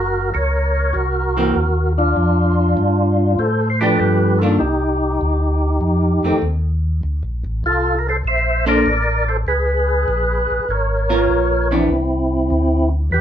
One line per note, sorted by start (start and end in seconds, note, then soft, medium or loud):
0.00 0.32 F#1 medium
0.00 0.30 F#4 medium
0.00 0.33 A#4 medium
0.34 0.93 C#2 loud
0.34 0.91 A#4 medium
0.34 0.97 C#5 medium
0.93 1.54 C2 medium
0.93 1.93 F#4 medium
0.93 1.93 A#4 medium
1.37 1.54 E3 medium
1.37 1.54 A#3 medium
1.37 1.54 C4 medium
1.56 2.15 D#2 medium
1.98 3.34 D4 medium
1.98 3.43 F4 loud
2.16 2.75 F2 medium
2.77 3.36 G2 medium
3.39 3.97 A2 medium
3.39 3.69 A4 medium
3.39 3.69 C5 loud
3.70 3.80 C5 medium
3.81 4.37 F3 medium
3.81 4.37 A3 medium
3.81 4.37 D4 medium
3.81 4.38 G4 medium
3.81 3.98 B4 medium
3.81 4.00 D5 loud
3.99 4.58 G2 medium
3.99 4.38 G4 medium
3.99 4.42 B4 medium
4.38 4.58 D#3 medium
4.38 4.59 A#3 medium
4.38 4.58 F4 medium
4.38 4.59 A4 medium
4.43 4.59 D4 medium
4.59 5.19 C2 medium
4.59 6.38 D#4 medium
4.59 6.38 G4 medium
5.21 5.80 D2 medium
5.81 6.20 F2 medium
6.23 6.33 F2 soft
6.23 6.41 D#3 medium
6.23 6.41 A3 medium
6.23 6.42 C4 medium
6.42 7.01 D#2 medium
7.03 7.23 D2 medium
7.23 7.43 A#1 medium
7.45 7.63 A1 medium
7.64 8.23 C2 medium
7.64 7.95 F4 medium
7.64 7.99 A4 medium
7.99 8.07 A#4 medium
8.09 8.17 A4 medium
8.09 8.17 C5 medium
8.24 8.84 A#1 medium
8.24 8.65 C5 medium
8.24 8.65 E5 loud
8.66 8.84 A#3 medium
8.66 8.84 D4 medium
8.66 8.84 A4 medium
8.66 9.25 A#4 medium
8.66 8.84 C5 medium
8.66 9.30 D5 loud
8.86 9.45 A1 medium
9.28 9.37 A4 medium
9.28 9.37 C5 loud
9.47 10.06 C#2 medium
9.47 10.65 G#4 medium
9.47 10.73 B4 loud
10.08 10.47 A#1 medium
10.50 10.60 A#1 soft
10.69 11.28 G#1 medium
10.69 11.68 A#4 medium
10.69 11.75 C#5 medium
11.10 11.67 B3 medium
11.10 11.67 F4 medium
11.10 11.67 A#4 medium
11.29 11.88 A#1 medium
11.71 11.88 E3 medium
11.71 11.89 B3 medium
11.71 12.89 C4 medium
11.71 11.89 D4 medium
11.71 12.89 E4 medium
11.90 12.49 C2 medium
12.50 13.10 D2 loud
13.11 13.21 E2 medium
13.11 13.21 G4 medium
13.11 13.21 B4 medium